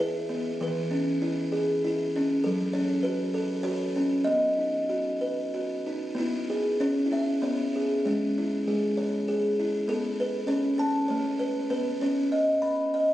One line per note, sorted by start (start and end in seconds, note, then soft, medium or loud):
0.00 0.28 B3 medium
0.00 0.61 E4 medium
0.00 0.61 G#4 medium
0.00 0.61 B4 medium
0.29 0.60 B3 medium
0.61 1.84 E3 medium
0.61 1.19 B4 medium
0.91 2.14 C#4 medium
1.22 1.83 E4 medium
1.52 2.44 G#4 medium
1.84 2.45 E4 medium
2.16 2.45 C#4 medium
2.44 3.67 F#3 medium
2.44 2.76 A4 medium
2.73 3.95 C#4 medium
2.73 3.06 C#5 medium
3.03 3.63 F#4 medium
3.03 3.67 B4 medium
3.34 4.27 A4 medium
3.63 4.26 F#4 medium
3.63 4.28 C#5 medium
3.96 4.27 C#4 medium
4.24 5.53 B3 medium
4.24 5.48 D#5 medium
4.58 5.85 D#4 medium
4.89 5.53 F#4 medium
5.21 6.18 B4 medium
5.54 6.18 F#4 medium
5.87 6.18 D#4 medium
6.15 6.82 B3 medium
6.15 7.05 E4 medium
6.50 7.74 G#4 medium
6.80 7.06 C#4 medium
6.80 7.42 C#5 medium
7.06 7.13 E4 medium
7.11 7.44 C#4 medium
7.11 8.06 E5 medium
7.42 8.07 B3 medium
7.42 8.06 C#5 medium
7.76 8.06 G#4 medium
8.05 8.66 G#3 medium
8.05 9.28 C#4 medium
8.38 9.58 E4 medium
8.67 9.54 G#3 medium
8.67 9.27 G#4 medium
8.97 9.88 C#5 medium
9.28 9.88 G#4 medium
9.60 9.89 E4 medium
9.88 10.50 B3 medium
9.88 11.10 A4 medium
10.20 11.38 B4 medium
10.47 10.61 C#4 medium
10.47 11.07 C#5 medium
10.78 11.10 C#4 medium
10.78 11.71 A5 medium
11.08 11.73 A3 medium
11.08 11.70 C#5 medium
11.39 11.69 B4 medium
11.70 12.02 B3 medium
11.70 12.95 B4 medium
12.01 12.60 C#4 medium
12.01 13.14 C#5 medium
12.32 12.93 D#5 medium
12.62 13.14 B5 medium
12.94 13.14 D#5 medium